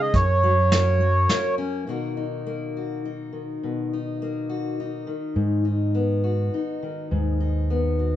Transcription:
Already playing: steel-string acoustic guitar C#3 D#3 G#3 D#4 G#4
0.01 accordion D#5
0.14 fingered electric bass F#2, steel-string acoustic guitar F#2, accordion C#5, kick, closed hi-hat
0.43 steel-string acoustic guitar F#3
0.72 steel-string acoustic guitar A#3, snare, closed hi-hat
1.01 steel-string acoustic guitar F#3
1.29 steel-string acoustic guitar A#3, snare, closed hi-hat
1.58 steel-string acoustic guitar C#4
1.87 steel-string acoustic guitar B2 D#3 A#3 D#4 F#4
2.17 steel-string acoustic guitar D#4
2.47 steel-string acoustic guitar A#3
2.77 steel-string acoustic guitar F#4
3.05 steel-string acoustic guitar D#4
3.33 steel-string acoustic guitar D#3
3.63 steel-string acoustic guitar B2
3.93 steel-string acoustic guitar D#4
4.22 steel-string acoustic guitar A#3
4.49 steel-string acoustic guitar F#4
4.80 steel-string acoustic guitar D#4
5.07 steel-string acoustic guitar D#3
5.36 steel-string acoustic guitar G#2, fingered electric bass G#2
5.65 steel-string acoustic guitar D#4
5.95 steel-string acoustic guitar B3
6.24 steel-string acoustic guitar F#4
6.54 steel-string acoustic guitar D#4
6.83 steel-string acoustic guitar D#3
7.11 fingered electric bass D#2, steel-string acoustic guitar G#2
7.40 steel-string acoustic guitar D#4
7.70 steel-string acoustic guitar B3
7.99 steel-string acoustic guitar F#4

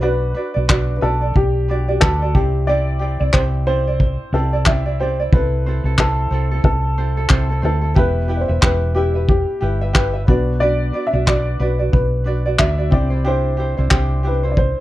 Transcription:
Already playing: fingered electric bass B1
0.01 ukulele D4 F#4 B4 D5, upright piano B4
0.34 ukulele D4 F#4 B4 D5
0.54 fingered electric bass B1, ukulele D4 F#4 D5
0.68 ukulele D4 F#4 B4 D5, kick, clap
0.97 upright piano B4
1.01 fingered electric bass B1, ukulele D4 F#4 B4 D5, upright piano A4
1.21 ukulele D4 D5
1.35 fingered electric bass B1, upright piano G4, kick
1.68 ukulele D4 F#4 B4 D5
1.88 ukulele D4 F#4 D5, upright piano G4
2.01 fingered electric bass D2, ukulele D4 F#4 B4 D5, upright piano A4, kick, clap
2.22 ukulele D4 F#4 D5
2.35 fingered electric bass C2, ukulele C4 E4 G4 D5, upright piano G4, kick
2.67 ukulele C4 E4 G4 D5, upright piano D5
2.99 ukulele C4 E4 G4 D5
3.20 fingered electric bass C2, ukulele C4 E4 D5
3.33 fingered electric bass C2, ukulele C4 E4 G4 D5, upright piano C5, kick, clap
3.67 ukulele C4 E4 G4 D5, upright piano C5
3.87 ukulele C4 E4 D5
4.00 kick
4.33 fingered electric bass C2, ukulele C4 E4 G4 D5, upright piano A4
4.53 ukulele C4 E4 D5
4.66 ukulele C4 E4 G4 D5, upright piano E5, kick, clap
4.86 ukulele C4 E4 D5
5.00 ukulele C4 E4 G4 D5, upright piano C5
5.20 ukulele C4 E4 D5
5.33 fingered electric bass C2, ukulele C4 E4 A4, upright piano B4, kick
5.66 ukulele C4 E4 A4 C5
5.84 fingered electric bass C2, ukulele C4 E4 A4
5.98 ukulele C4 E4 A4 C5, upright piano A4, kick, clap
6.31 fingered electric bass C2, ukulele C4 E4 A4 C5
6.51 ukulele C4 E4 A4
6.64 fingered electric bass C2, upright piano A4, kick
6.98 ukulele C4 E4 A4 C5
7.17 ukulele C4 E4 A4
7.29 fingered electric bass C2, ukulele C4 E4 A4 C5, kick, clap
7.50 ukulele C4 E4 A4
7.62 fingered electric bass D2, ukulele C4 E4 A4 C5, upright piano A4
7.81 ukulele C4 E4 A4
7.95 fingered electric bass E1, upright piano B3 E4 G4 B4 E5, ukulele E4 G4 B4 E5, kick
8.28 ukulele E4 G4 B4 E5
8.37 upright piano C5 D5
8.48 fingered electric bass E1, ukulele E4 B4 E5
8.61 fingered electric bass E1, ukulele E4 G4 B4 E5, upright piano B4, kick, clap
8.95 ukulele E4 G4 B4 E5, upright piano G4
9.14 ukulele E4 B4 E5
9.29 upright piano G4, kick
9.61 fingered electric bass G1, ukulele E4 G4 B4 E5
9.81 ukulele E4 B4 E5
9.93 ukulele E4 G4 B4 E5, upright piano B4, kick, clap
10.13 ukulele E4 B4 E5
10.27 fingered electric bass B1, upright piano B3 D4 F#4 B4 D5, ukulele D4 F#4 B4 D5, kick
10.60 ukulele D4 F#4 B4 D5, upright piano D5
10.93 ukulele D4 F#4 B4 D5
11.07 upright piano E5
11.13 fingered electric bass B1, ukulele D4 F#4 D5
11.26 ukulele D4 F#4 B4 D5, upright piano D5, kick, clap
11.60 fingered electric bass B1, ukulele D4 F#4 B4 D5, upright piano B4
11.79 ukulele D4 F#4 D5
11.93 fingered electric bass B1, upright piano B4, kick
12.24 ukulele D4 F#4 B4 D5
12.46 ukulele D4 F#4 D5
12.58 fingered electric bass D2, ukulele D4 F#4 B4 D5, upright piano E5, kick, clap
12.78 ukulele D4 F#4 D5
12.89 fingered electric bass C2, upright piano C4 E4 G4 D5, ukulele D4 E4 G4, kick
12.94 ukulele C5, upright piano D5
13.10 ukulele D4 E4 C5
13.24 ukulele D4 E4 G4 C5, upright piano C5
13.57 ukulele D4 E4 G4 C5
13.77 fingered electric bass C2, ukulele D4 E4 C5
13.90 fingered electric bass C2, ukulele D4 E4 G4 C5, kick, clap
14.23 ukulele D4 E4 G4 C5, upright piano B4
14.43 ukulele D4 E4 C5
14.51 upright piano D5
14.57 upright piano C5, kick

